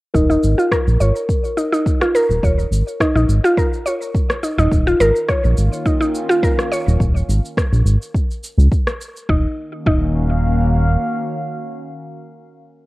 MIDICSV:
0, 0, Header, 1, 6, 480
1, 0, Start_track
1, 0, Tempo, 571429
1, 126, Time_signature, 4, 2, 24, 8
1, 10804, End_track
2, 0, Start_track
2, 0, Title_t, "Singing bowl"
2, 0, Program_c, 0, 14
2, 115, Note_on_c, 0, 70, 70
2, 5891, Note_off_c, 0, 70, 0
2, 10804, End_track
3, 0, Start_track
3, 0, Title_t, "Synth pluck"
3, 0, Program_c, 1, 84
3, 119, Note_on_c, 1, 63, 86
3, 239, Note_off_c, 1, 63, 0
3, 249, Note_on_c, 1, 63, 102
3, 478, Note_off_c, 1, 63, 0
3, 487, Note_on_c, 1, 65, 95
3, 555, Note_off_c, 1, 65, 0
3, 601, Note_on_c, 1, 70, 108
3, 676, Note_off_c, 1, 70, 0
3, 843, Note_on_c, 1, 73, 68
3, 966, Note_off_c, 1, 73, 0
3, 1319, Note_on_c, 1, 63, 76
3, 1438, Note_off_c, 1, 63, 0
3, 1448, Note_on_c, 1, 63, 98
3, 1678, Note_off_c, 1, 63, 0
3, 1691, Note_on_c, 1, 65, 105
3, 1756, Note_off_c, 1, 65, 0
3, 1804, Note_on_c, 1, 70, 95
3, 1878, Note_off_c, 1, 70, 0
3, 2047, Note_on_c, 1, 73, 82
3, 2168, Note_off_c, 1, 73, 0
3, 2525, Note_on_c, 1, 63, 87
3, 2641, Note_off_c, 1, 63, 0
3, 2651, Note_on_c, 1, 63, 98
3, 2880, Note_off_c, 1, 63, 0
3, 2893, Note_on_c, 1, 65, 103
3, 2957, Note_off_c, 1, 65, 0
3, 3004, Note_on_c, 1, 70, 94
3, 3078, Note_off_c, 1, 70, 0
3, 3241, Note_on_c, 1, 73, 71
3, 3365, Note_off_c, 1, 73, 0
3, 3722, Note_on_c, 1, 63, 65
3, 3840, Note_off_c, 1, 63, 0
3, 3850, Note_on_c, 1, 63, 98
3, 3964, Note_off_c, 1, 63, 0
3, 4091, Note_on_c, 1, 65, 102
3, 4156, Note_off_c, 1, 65, 0
3, 4202, Note_on_c, 1, 70, 100
3, 4277, Note_off_c, 1, 70, 0
3, 4441, Note_on_c, 1, 73, 87
3, 4565, Note_off_c, 1, 73, 0
3, 4919, Note_on_c, 1, 63, 74
3, 5035, Note_off_c, 1, 63, 0
3, 5045, Note_on_c, 1, 63, 96
3, 5277, Note_off_c, 1, 63, 0
3, 5286, Note_on_c, 1, 65, 100
3, 5354, Note_off_c, 1, 65, 0
3, 5401, Note_on_c, 1, 70, 99
3, 5477, Note_off_c, 1, 70, 0
3, 5641, Note_on_c, 1, 73, 75
3, 5765, Note_off_c, 1, 73, 0
3, 7806, Note_on_c, 1, 63, 99
3, 7946, Note_off_c, 1, 63, 0
3, 8288, Note_on_c, 1, 63, 94
3, 8427, Note_off_c, 1, 63, 0
3, 10804, End_track
4, 0, Start_track
4, 0, Title_t, "Ambient pad"
4, 0, Program_c, 2, 92
4, 3953, Note_on_c, 2, 51, 73
4, 4123, Note_on_c, 2, 65, 86
4, 4402, Note_on_c, 2, 58, 74
4, 4689, Note_on_c, 2, 61, 91
4, 4831, Note_on_c, 2, 77, 76
4, 5879, Note_off_c, 2, 51, 0
4, 5879, Note_off_c, 2, 58, 0
4, 5882, Note_off_c, 2, 65, 0
4, 5884, Note_off_c, 2, 61, 0
4, 5884, Note_off_c, 2, 77, 0
4, 7797, Note_on_c, 2, 51, 79
4, 7877, Note_on_c, 2, 58, 78
4, 7952, Note_on_c, 2, 61, 75
4, 8016, Note_on_c, 2, 66, 83
4, 8096, Note_on_c, 2, 77, 82
4, 10360, Note_off_c, 2, 51, 0
4, 10360, Note_off_c, 2, 66, 0
4, 10362, Note_off_c, 2, 58, 0
4, 10362, Note_off_c, 2, 61, 0
4, 10364, Note_off_c, 2, 77, 0
4, 10804, End_track
5, 0, Start_track
5, 0, Title_t, "Analog synth bass"
5, 0, Program_c, 3, 38
5, 121, Note_on_c, 3, 27, 88
5, 305, Note_off_c, 3, 27, 0
5, 363, Note_on_c, 3, 32, 83
5, 459, Note_off_c, 3, 32, 0
5, 730, Note_on_c, 3, 34, 92
5, 815, Note_off_c, 3, 34, 0
5, 840, Note_on_c, 3, 32, 83
5, 937, Note_off_c, 3, 32, 0
5, 1926, Note_on_c, 3, 27, 80
5, 2013, Note_off_c, 3, 27, 0
5, 2043, Note_on_c, 3, 27, 88
5, 2226, Note_off_c, 3, 27, 0
5, 2275, Note_on_c, 3, 32, 81
5, 2375, Note_off_c, 3, 32, 0
5, 2644, Note_on_c, 3, 34, 92
5, 2732, Note_off_c, 3, 34, 0
5, 2756, Note_on_c, 3, 32, 88
5, 2855, Note_off_c, 3, 32, 0
5, 3844, Note_on_c, 3, 27, 81
5, 3932, Note_off_c, 3, 27, 0
5, 3961, Note_on_c, 3, 27, 96
5, 4145, Note_off_c, 3, 27, 0
5, 4199, Note_on_c, 3, 32, 88
5, 4297, Note_off_c, 3, 32, 0
5, 4571, Note_on_c, 3, 34, 92
5, 4656, Note_off_c, 3, 34, 0
5, 4683, Note_on_c, 3, 32, 84
5, 4779, Note_off_c, 3, 32, 0
5, 5769, Note_on_c, 3, 27, 81
5, 5854, Note_off_c, 3, 27, 0
5, 5879, Note_on_c, 3, 27, 94
5, 6064, Note_off_c, 3, 27, 0
5, 6119, Note_on_c, 3, 32, 87
5, 6217, Note_off_c, 3, 32, 0
5, 6483, Note_on_c, 3, 34, 97
5, 6571, Note_off_c, 3, 34, 0
5, 6592, Note_on_c, 3, 32, 87
5, 6693, Note_off_c, 3, 32, 0
5, 7204, Note_on_c, 3, 37, 105
5, 7292, Note_off_c, 3, 37, 0
5, 7804, Note_on_c, 3, 27, 88
5, 7945, Note_off_c, 3, 27, 0
5, 8283, Note_on_c, 3, 27, 86
5, 9211, Note_off_c, 3, 27, 0
5, 10804, End_track
6, 0, Start_track
6, 0, Title_t, "Drums"
6, 122, Note_on_c, 9, 36, 98
6, 129, Note_on_c, 9, 82, 44
6, 206, Note_off_c, 9, 36, 0
6, 213, Note_off_c, 9, 82, 0
6, 257, Note_on_c, 9, 82, 28
6, 341, Note_off_c, 9, 82, 0
6, 365, Note_on_c, 9, 82, 68
6, 449, Note_off_c, 9, 82, 0
6, 498, Note_on_c, 9, 82, 32
6, 582, Note_off_c, 9, 82, 0
6, 602, Note_on_c, 9, 36, 100
6, 605, Note_on_c, 9, 37, 77
6, 610, Note_on_c, 9, 82, 38
6, 686, Note_off_c, 9, 36, 0
6, 689, Note_off_c, 9, 37, 0
6, 694, Note_off_c, 9, 82, 0
6, 737, Note_on_c, 9, 82, 29
6, 821, Note_off_c, 9, 82, 0
6, 848, Note_on_c, 9, 82, 73
6, 932, Note_off_c, 9, 82, 0
6, 975, Note_on_c, 9, 82, 29
6, 1059, Note_off_c, 9, 82, 0
6, 1083, Note_on_c, 9, 36, 97
6, 1088, Note_on_c, 9, 82, 38
6, 1167, Note_off_c, 9, 36, 0
6, 1172, Note_off_c, 9, 82, 0
6, 1214, Note_on_c, 9, 82, 27
6, 1298, Note_off_c, 9, 82, 0
6, 1326, Note_on_c, 9, 82, 73
6, 1410, Note_off_c, 9, 82, 0
6, 1459, Note_on_c, 9, 82, 32
6, 1543, Note_off_c, 9, 82, 0
6, 1563, Note_on_c, 9, 36, 100
6, 1569, Note_on_c, 9, 82, 40
6, 1647, Note_off_c, 9, 36, 0
6, 1653, Note_off_c, 9, 82, 0
6, 1692, Note_on_c, 9, 37, 76
6, 1697, Note_on_c, 9, 82, 28
6, 1776, Note_off_c, 9, 37, 0
6, 1781, Note_off_c, 9, 82, 0
6, 1811, Note_on_c, 9, 82, 68
6, 1895, Note_off_c, 9, 82, 0
6, 1939, Note_on_c, 9, 82, 28
6, 2023, Note_off_c, 9, 82, 0
6, 2043, Note_on_c, 9, 36, 108
6, 2052, Note_on_c, 9, 82, 44
6, 2127, Note_off_c, 9, 36, 0
6, 2136, Note_off_c, 9, 82, 0
6, 2178, Note_on_c, 9, 82, 30
6, 2262, Note_off_c, 9, 82, 0
6, 2291, Note_on_c, 9, 82, 78
6, 2375, Note_off_c, 9, 82, 0
6, 2419, Note_on_c, 9, 82, 34
6, 2503, Note_off_c, 9, 82, 0
6, 2523, Note_on_c, 9, 36, 104
6, 2527, Note_on_c, 9, 37, 78
6, 2531, Note_on_c, 9, 82, 44
6, 2607, Note_off_c, 9, 36, 0
6, 2611, Note_off_c, 9, 37, 0
6, 2615, Note_off_c, 9, 82, 0
6, 2661, Note_on_c, 9, 82, 32
6, 2745, Note_off_c, 9, 82, 0
6, 2769, Note_on_c, 9, 82, 77
6, 2853, Note_off_c, 9, 82, 0
6, 2899, Note_on_c, 9, 82, 33
6, 2983, Note_off_c, 9, 82, 0
6, 3003, Note_on_c, 9, 36, 101
6, 3010, Note_on_c, 9, 82, 39
6, 3087, Note_off_c, 9, 36, 0
6, 3094, Note_off_c, 9, 82, 0
6, 3137, Note_on_c, 9, 82, 29
6, 3221, Note_off_c, 9, 82, 0
6, 3248, Note_on_c, 9, 82, 79
6, 3332, Note_off_c, 9, 82, 0
6, 3375, Note_on_c, 9, 82, 31
6, 3459, Note_off_c, 9, 82, 0
6, 3482, Note_on_c, 9, 36, 107
6, 3490, Note_on_c, 9, 82, 43
6, 3566, Note_off_c, 9, 36, 0
6, 3574, Note_off_c, 9, 82, 0
6, 3610, Note_on_c, 9, 37, 74
6, 3615, Note_on_c, 9, 82, 29
6, 3694, Note_off_c, 9, 37, 0
6, 3699, Note_off_c, 9, 82, 0
6, 3727, Note_on_c, 9, 82, 77
6, 3811, Note_off_c, 9, 82, 0
6, 3855, Note_on_c, 9, 82, 32
6, 3939, Note_off_c, 9, 82, 0
6, 3961, Note_on_c, 9, 36, 117
6, 3968, Note_on_c, 9, 82, 44
6, 4045, Note_off_c, 9, 36, 0
6, 4052, Note_off_c, 9, 82, 0
6, 4096, Note_on_c, 9, 82, 30
6, 4180, Note_off_c, 9, 82, 0
6, 4206, Note_on_c, 9, 82, 82
6, 4290, Note_off_c, 9, 82, 0
6, 4333, Note_on_c, 9, 82, 34
6, 4417, Note_off_c, 9, 82, 0
6, 4440, Note_on_c, 9, 37, 75
6, 4441, Note_on_c, 9, 36, 110
6, 4444, Note_on_c, 9, 82, 42
6, 4524, Note_off_c, 9, 37, 0
6, 4525, Note_off_c, 9, 36, 0
6, 4528, Note_off_c, 9, 82, 0
6, 4572, Note_on_c, 9, 82, 35
6, 4656, Note_off_c, 9, 82, 0
6, 4684, Note_on_c, 9, 82, 79
6, 4768, Note_off_c, 9, 82, 0
6, 4814, Note_on_c, 9, 82, 35
6, 4898, Note_off_c, 9, 82, 0
6, 4920, Note_on_c, 9, 36, 98
6, 4924, Note_on_c, 9, 82, 41
6, 5004, Note_off_c, 9, 36, 0
6, 5008, Note_off_c, 9, 82, 0
6, 5055, Note_on_c, 9, 82, 31
6, 5139, Note_off_c, 9, 82, 0
6, 5167, Note_on_c, 9, 82, 75
6, 5251, Note_off_c, 9, 82, 0
6, 5299, Note_on_c, 9, 82, 33
6, 5383, Note_off_c, 9, 82, 0
6, 5400, Note_on_c, 9, 36, 110
6, 5410, Note_on_c, 9, 82, 43
6, 5484, Note_off_c, 9, 36, 0
6, 5494, Note_off_c, 9, 82, 0
6, 5533, Note_on_c, 9, 37, 71
6, 5538, Note_on_c, 9, 82, 29
6, 5617, Note_off_c, 9, 37, 0
6, 5622, Note_off_c, 9, 82, 0
6, 5651, Note_on_c, 9, 82, 73
6, 5735, Note_off_c, 9, 82, 0
6, 5781, Note_on_c, 9, 82, 31
6, 5865, Note_off_c, 9, 82, 0
6, 5880, Note_on_c, 9, 36, 114
6, 5891, Note_on_c, 9, 82, 45
6, 5964, Note_off_c, 9, 36, 0
6, 5975, Note_off_c, 9, 82, 0
6, 6020, Note_on_c, 9, 82, 30
6, 6104, Note_off_c, 9, 82, 0
6, 6130, Note_on_c, 9, 82, 77
6, 6214, Note_off_c, 9, 82, 0
6, 6260, Note_on_c, 9, 82, 34
6, 6344, Note_off_c, 9, 82, 0
6, 6361, Note_on_c, 9, 36, 110
6, 6366, Note_on_c, 9, 37, 70
6, 6370, Note_on_c, 9, 82, 47
6, 6445, Note_off_c, 9, 36, 0
6, 6450, Note_off_c, 9, 37, 0
6, 6454, Note_off_c, 9, 82, 0
6, 6495, Note_on_c, 9, 82, 33
6, 6579, Note_off_c, 9, 82, 0
6, 6608, Note_on_c, 9, 82, 80
6, 6692, Note_off_c, 9, 82, 0
6, 6738, Note_on_c, 9, 82, 33
6, 6822, Note_off_c, 9, 82, 0
6, 6841, Note_on_c, 9, 36, 106
6, 6852, Note_on_c, 9, 82, 41
6, 6925, Note_off_c, 9, 36, 0
6, 6936, Note_off_c, 9, 82, 0
6, 6980, Note_on_c, 9, 82, 28
6, 7064, Note_off_c, 9, 82, 0
6, 7088, Note_on_c, 9, 82, 77
6, 7172, Note_off_c, 9, 82, 0
6, 7220, Note_on_c, 9, 82, 32
6, 7304, Note_off_c, 9, 82, 0
6, 7322, Note_on_c, 9, 36, 106
6, 7329, Note_on_c, 9, 82, 44
6, 7406, Note_off_c, 9, 36, 0
6, 7413, Note_off_c, 9, 82, 0
6, 7452, Note_on_c, 9, 37, 66
6, 7457, Note_on_c, 9, 82, 29
6, 7536, Note_off_c, 9, 37, 0
6, 7541, Note_off_c, 9, 82, 0
6, 7571, Note_on_c, 9, 82, 81
6, 7655, Note_off_c, 9, 82, 0
6, 7701, Note_on_c, 9, 82, 29
6, 7785, Note_off_c, 9, 82, 0
6, 7804, Note_on_c, 9, 36, 116
6, 7888, Note_off_c, 9, 36, 0
6, 8285, Note_on_c, 9, 36, 112
6, 8369, Note_off_c, 9, 36, 0
6, 10804, End_track
0, 0, End_of_file